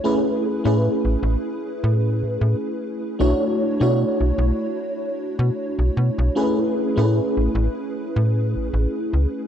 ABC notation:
X:1
M:4/4
L:1/16
Q:"Swing 16ths" 1/4=76
K:A
V:1 name="FM electric piano"
[A,CEGB]3 [A,CEGB]12- [A,CEGB] | [A,DEFc]3 [A,DEFc]12- [A,DEFc] | [A,CEGB]3 [A,CEGB]12- [A,CEGB] |]
V:2 name="FM bass" clef=bass
z3 A,, z A,,, A,,, z2 A,,2 A,, A,, z3 | B,,, z2 B,, z B,,, B,,, z4 B,, z B,,, B,, B,,, | z3 A,, z A,,, A,,, z2 A,,2 A,,, A,,, z C,, z |]